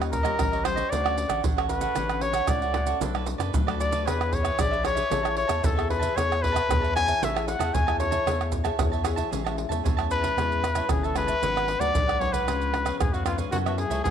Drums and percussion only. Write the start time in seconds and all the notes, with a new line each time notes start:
0.02 pandeiro, tamborim, maracas
0.13 pandeiro, maracas, surdo
0.25 pandeiro, tamborim, maracas
0.39 pandeiro, tamborim, maracas, surdo
0.53 pandeiro, maracas
0.65 pandeiro, tamborim, maracas
0.77 pandeiro, maracas
0.92 pandeiro, maracas, surdo
1.06 pandeiro, tamborim, maracas
1.18 pandeiro, maracas
1.30 pandeiro, tamborim, maracas
1.44 pandeiro, maracas, surdo
1.58 pandeiro, tamborim, maracas
1.69 pandeiro, maracas
1.81 pandeiro, maracas
1.96 pandeiro, tamborim, maracas, surdo
2.09 pandeiro, tamborim, maracas
2.21 pandeiro
2.34 pandeiro, tamborim, maracas
2.47 pandeiro, tamborim, maracas, surdo
2.62 pandeiro, maracas
2.74 pandeiro, tamborim
2.87 pandeiro, maracas
3.01 pandeiro, maracas, surdo
3.15 pandeiro, tamborim, maracas
3.26 pandeiro, maracas
3.40 pandeiro, tamborim, maracas
3.54 pandeiro, maracas, surdo
3.68 pandeiro, tamborim, maracas
3.80 pandeiro, maracas
3.92 pandeiro, maracas
4.08 pandeiro, tamborim, maracas, surdo
4.21 pandeiro, tamborim, maracas
4.33 pandeiro, surdo
4.45 pandeiro, tamborim, maracas
4.59 pandeiro, tamborim, maracas, surdo
4.73 pandeiro, maracas
4.85 pandeiro, tamborim, maracas
4.97 pandeiro, maracas
5.11 pandeiro, maracas, surdo
5.25 pandeiro, tamborim, maracas
5.37 pandeiro
5.49 pandeiro, tamborim, maracas
5.64 pandeiro, maracas, surdo
5.79 pandeiro, tamborim, maracas
5.90 pandeiro
6.03 pandeiro, maracas
6.18 pandeiro, tamborim, maracas, surdo
6.32 pandeiro, tamborim, maracas
6.44 pandeiro, surdo
6.56 pandeiro, tamborim, maracas
6.71 pandeiro, tamborim, maracas, surdo
6.84 pandeiro, maracas
6.97 pandeiro, tamborim, maracas
7.08 pandeiro, maracas
7.23 pandeiro, maracas, surdo
7.37 pandeiro, tamborim, maracas
7.48 pandeiro, maracas
7.60 pandeiro, tamborim, maracas
7.74 pandeiro, maracas, surdo
7.88 pandeiro, tamborim, maracas
8.00 pandeiro, maracas
8.12 pandeiro, maracas
8.27 pandeiro, tamborim, maracas, surdo
8.41 pandeiro, tamborim, maracas
8.52 pandeiro, maracas, surdo
8.65 pandeiro, tamborim, maracas
8.79 pandeiro, tamborim, maracas, surdo
8.93 pandeiro, maracas
9.05 pandeiro, tamborim, maracas
9.17 pandeiro, maracas
9.33 pandeiro, maracas, surdo
9.47 pandeiro, tamborim, maracas
9.58 pandeiro
9.72 pandeiro, maracas
9.86 pandeiro, maracas, surdo
9.99 pandeiro, tamborim, maracas
10.11 pandeiro, maracas
10.24 pandeiro, maracas, surdo
10.38 pandeiro, tamborim, maracas, surdo
10.52 pandeiro, maracas, surdo
10.64 pandeiro, tamborim, maracas, surdo
10.75 pandeiro, tamborim, maracas
10.89 pandeiro, tamborim, maracas, surdo
11.04 pandeiro, maracas, surdo
11.16 pandeiro, tamborim, maracas
11.28 pandeiro, maracas, surdo
11.43 pandeiro, maracas, surdo
11.57 pandeiro, tamborim, maracas
11.68 pandeiro
11.81 pandeiro, maracas
11.95 pandeiro, maracas, surdo
12.09 pandeiro, tamborim, maracas
12.21 pandeiro
12.34 pandeiro, maracas, surdo
12.48 pandeiro, tamborim, maracas, surdo
12.62 pandeiro, maracas, surdo
12.74 pandeiro, tamborim, surdo
12.86 pandeiro, tamborim, maracas
13.00 pandeiro, tamborim, maracas, surdo
13.14 pandeiro, maracas, surdo
13.26 pandeiro, tamborim, maracas
13.38 pandeiro, maracas, surdo
13.52 pandeiro, maracas, surdo
13.66 pandeiro, tamborim, maracas
13.78 pandeiro
13.91 pandeiro, maracas
14.05 pandeiro, maracas, surdo